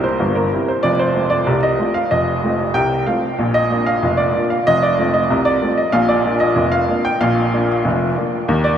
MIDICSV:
0, 0, Header, 1, 2, 480
1, 0, Start_track
1, 0, Key_signature, -2, "major"
1, 0, Tempo, 636943
1, 638, Time_signature, 2, 2, 24, 8
1, 6615, End_track
2, 0, Start_track
2, 0, Title_t, "Upright piano"
2, 0, Program_c, 0, 0
2, 0, Control_c, 0, 64, 127
2, 0, Note_on_c, 0, 36, 77
2, 0, Note_on_c, 0, 48, 80
2, 0, Note_on_c, 0, 55, 51
2, 0, Note_on_c, 0, 60, 41
2, 0, Note_on_c, 0, 64, 48
2, 0, Note_on_c, 0, 70, 77
2, 28, Note_on_c, 0, 72, 77
2, 148, Note_on_c, 0, 31, 73
2, 148, Note_on_c, 0, 43, 73
2, 163, Control_c, 0, 64, 0
2, 168, Note_off_c, 0, 64, 0
2, 168, Note_off_c, 0, 70, 0
2, 172, Note_off_c, 0, 55, 0
2, 173, Note_off_c, 0, 36, 0
2, 173, Note_off_c, 0, 48, 0
2, 173, Note_off_c, 0, 60, 0
2, 266, Note_on_c, 0, 70, 68
2, 273, Note_off_c, 0, 72, 0
2, 356, Note_off_c, 0, 31, 0
2, 356, Note_off_c, 0, 43, 0
2, 395, Note_on_c, 0, 55, 45
2, 399, Note_on_c, 0, 64, 54
2, 401, Note_on_c, 0, 60, 49
2, 512, Note_off_c, 0, 70, 0
2, 515, Note_on_c, 0, 72, 65
2, 528, Note_off_c, 0, 55, 0
2, 531, Note_off_c, 0, 64, 0
2, 532, Note_off_c, 0, 60, 0
2, 624, Note_on_c, 0, 74, 87
2, 629, Note_on_c, 0, 29, 71
2, 630, Note_on_c, 0, 41, 79
2, 637, Note_off_c, 0, 72, 0
2, 749, Note_on_c, 0, 72, 79
2, 751, Note_off_c, 0, 74, 0
2, 776, Control_c, 0, 64, 127
2, 837, Note_off_c, 0, 29, 0
2, 838, Note_off_c, 0, 41, 0
2, 869, Note_on_c, 0, 57, 39
2, 870, Note_on_c, 0, 60, 43
2, 876, Note_on_c, 0, 65, 45
2, 979, Note_on_c, 0, 74, 85
2, 994, Note_off_c, 0, 72, 0
2, 1004, Note_off_c, 0, 57, 0
2, 1005, Note_off_c, 0, 60, 0
2, 1009, Note_off_c, 0, 65, 0
2, 1104, Note_on_c, 0, 36, 75
2, 1108, Note_on_c, 0, 48, 76
2, 1130, Control_c, 0, 64, 0
2, 1227, Note_on_c, 0, 75, 83
2, 1230, Note_off_c, 0, 74, 0
2, 1315, Note_off_c, 0, 36, 0
2, 1317, Note_off_c, 0, 48, 0
2, 1350, Note_on_c, 0, 57, 46
2, 1355, Note_on_c, 0, 60, 50
2, 1357, Note_on_c, 0, 65, 52
2, 1464, Note_on_c, 0, 77, 79
2, 1473, Note_off_c, 0, 75, 0
2, 1485, Note_off_c, 0, 57, 0
2, 1488, Note_off_c, 0, 60, 0
2, 1489, Note_off_c, 0, 65, 0
2, 1589, Note_on_c, 0, 75, 86
2, 1590, Note_on_c, 0, 29, 73
2, 1592, Note_off_c, 0, 77, 0
2, 1593, Note_on_c, 0, 41, 74
2, 1751, Control_c, 0, 64, 127
2, 1798, Note_off_c, 0, 29, 0
2, 1800, Note_off_c, 0, 41, 0
2, 1834, Note_on_c, 0, 57, 50
2, 1834, Note_on_c, 0, 60, 47
2, 1836, Note_on_c, 0, 65, 46
2, 1968, Note_off_c, 0, 57, 0
2, 1968, Note_off_c, 0, 60, 0
2, 1969, Note_off_c, 0, 65, 0
2, 2066, Note_on_c, 0, 79, 100
2, 2067, Note_on_c, 0, 48, 70
2, 2069, Note_on_c, 0, 36, 70
2, 2075, Note_off_c, 0, 75, 0
2, 2086, Control_c, 0, 64, 0
2, 2277, Note_off_c, 0, 48, 0
2, 2278, Note_off_c, 0, 36, 0
2, 2310, Note_on_c, 0, 77, 70
2, 2313, Note_off_c, 0, 79, 0
2, 2313, Note_on_c, 0, 57, 42
2, 2317, Note_on_c, 0, 60, 46
2, 2321, Note_on_c, 0, 65, 51
2, 2447, Note_off_c, 0, 57, 0
2, 2450, Note_off_c, 0, 60, 0
2, 2453, Note_off_c, 0, 65, 0
2, 2552, Note_on_c, 0, 34, 71
2, 2556, Note_on_c, 0, 46, 82
2, 2669, Note_on_c, 0, 75, 96
2, 2675, Note_off_c, 0, 77, 0
2, 2710, Control_c, 0, 64, 127
2, 2760, Note_off_c, 0, 34, 0
2, 2762, Note_off_c, 0, 46, 0
2, 2793, Note_on_c, 0, 58, 42
2, 2799, Note_on_c, 0, 62, 46
2, 2800, Note_on_c, 0, 65, 46
2, 2912, Note_on_c, 0, 77, 80
2, 2915, Note_off_c, 0, 75, 0
2, 2927, Note_off_c, 0, 58, 0
2, 2932, Note_off_c, 0, 62, 0
2, 2932, Note_off_c, 0, 65, 0
2, 3032, Note_on_c, 0, 29, 75
2, 3035, Note_on_c, 0, 41, 75
2, 3048, Control_c, 0, 64, 0
2, 3144, Note_on_c, 0, 74, 83
2, 3156, Note_off_c, 0, 77, 0
2, 3240, Note_off_c, 0, 29, 0
2, 3241, Note_off_c, 0, 41, 0
2, 3274, Note_on_c, 0, 58, 50
2, 3278, Note_on_c, 0, 62, 51
2, 3281, Note_on_c, 0, 65, 50
2, 3392, Note_off_c, 0, 74, 0
2, 3393, Note_on_c, 0, 77, 69
2, 3408, Note_off_c, 0, 58, 0
2, 3411, Note_off_c, 0, 62, 0
2, 3413, Note_off_c, 0, 65, 0
2, 3517, Note_off_c, 0, 77, 0
2, 3518, Note_on_c, 0, 75, 106
2, 3520, Note_on_c, 0, 29, 76
2, 3521, Note_on_c, 0, 41, 84
2, 3636, Note_on_c, 0, 74, 84
2, 3640, Note_off_c, 0, 75, 0
2, 3654, Control_c, 0, 64, 127
2, 3724, Note_off_c, 0, 29, 0
2, 3725, Note_off_c, 0, 41, 0
2, 3758, Note_on_c, 0, 57, 47
2, 3762, Note_on_c, 0, 60, 46
2, 3764, Note_on_c, 0, 65, 53
2, 3871, Note_on_c, 0, 75, 85
2, 3879, Note_off_c, 0, 74, 0
2, 3891, Note_off_c, 0, 57, 0
2, 3893, Note_off_c, 0, 60, 0
2, 3895, Note_off_c, 0, 65, 0
2, 3997, Note_on_c, 0, 36, 73
2, 3997, Note_on_c, 0, 48, 79
2, 4010, Control_c, 0, 64, 0
2, 4108, Note_on_c, 0, 74, 92
2, 4116, Note_off_c, 0, 75, 0
2, 4203, Note_off_c, 0, 36, 0
2, 4203, Note_off_c, 0, 48, 0
2, 4235, Note_on_c, 0, 60, 46
2, 4236, Note_on_c, 0, 57, 45
2, 4238, Note_on_c, 0, 65, 53
2, 4351, Note_on_c, 0, 75, 78
2, 4355, Note_off_c, 0, 74, 0
2, 4369, Note_off_c, 0, 57, 0
2, 4369, Note_off_c, 0, 60, 0
2, 4371, Note_off_c, 0, 65, 0
2, 4464, Note_on_c, 0, 77, 95
2, 4468, Note_on_c, 0, 34, 81
2, 4468, Note_on_c, 0, 46, 85
2, 4476, Note_off_c, 0, 75, 0
2, 4586, Note_on_c, 0, 74, 88
2, 4593, Note_off_c, 0, 77, 0
2, 4631, Control_c, 0, 64, 127
2, 4678, Note_off_c, 0, 34, 0
2, 4678, Note_off_c, 0, 46, 0
2, 4710, Note_on_c, 0, 62, 49
2, 4711, Note_on_c, 0, 58, 46
2, 4715, Note_on_c, 0, 65, 53
2, 4823, Note_on_c, 0, 75, 89
2, 4833, Note_off_c, 0, 74, 0
2, 4845, Note_off_c, 0, 58, 0
2, 4845, Note_off_c, 0, 62, 0
2, 4849, Note_off_c, 0, 65, 0
2, 4941, Note_on_c, 0, 41, 77
2, 4942, Note_on_c, 0, 29, 78
2, 4969, Control_c, 0, 64, 0
2, 5061, Note_on_c, 0, 77, 94
2, 5071, Note_off_c, 0, 75, 0
2, 5153, Note_off_c, 0, 41, 0
2, 5154, Note_off_c, 0, 29, 0
2, 5185, Note_on_c, 0, 58, 55
2, 5188, Note_on_c, 0, 62, 45
2, 5192, Note_on_c, 0, 65, 57
2, 5311, Note_off_c, 0, 77, 0
2, 5311, Note_on_c, 0, 79, 94
2, 5321, Note_off_c, 0, 58, 0
2, 5324, Note_off_c, 0, 62, 0
2, 5326, Note_off_c, 0, 65, 0
2, 5431, Note_on_c, 0, 77, 91
2, 5434, Note_on_c, 0, 34, 83
2, 5435, Note_off_c, 0, 79, 0
2, 5436, Note_on_c, 0, 46, 91
2, 5574, Control_c, 0, 64, 127
2, 5640, Note_off_c, 0, 34, 0
2, 5642, Note_off_c, 0, 46, 0
2, 5679, Note_on_c, 0, 58, 53
2, 5681, Note_on_c, 0, 62, 54
2, 5681, Note_on_c, 0, 65, 43
2, 5811, Note_off_c, 0, 58, 0
2, 5812, Note_off_c, 0, 62, 0
2, 5813, Note_off_c, 0, 65, 0
2, 5912, Note_on_c, 0, 29, 83
2, 5913, Note_on_c, 0, 41, 69
2, 5914, Note_off_c, 0, 77, 0
2, 5928, Control_c, 0, 64, 0
2, 6119, Note_off_c, 0, 29, 0
2, 6119, Note_off_c, 0, 41, 0
2, 6159, Note_on_c, 0, 58, 51
2, 6161, Note_on_c, 0, 62, 49
2, 6164, Note_on_c, 0, 65, 56
2, 6290, Note_off_c, 0, 58, 0
2, 6292, Note_off_c, 0, 62, 0
2, 6294, Note_off_c, 0, 65, 0
2, 6394, Note_on_c, 0, 39, 96
2, 6394, Note_on_c, 0, 51, 78
2, 6512, Note_on_c, 0, 74, 88
2, 6523, Control_c, 0, 64, 127
2, 6599, Note_off_c, 0, 39, 0
2, 6599, Note_off_c, 0, 51, 0
2, 6615, Note_off_c, 0, 74, 0
2, 6615, End_track
0, 0, End_of_file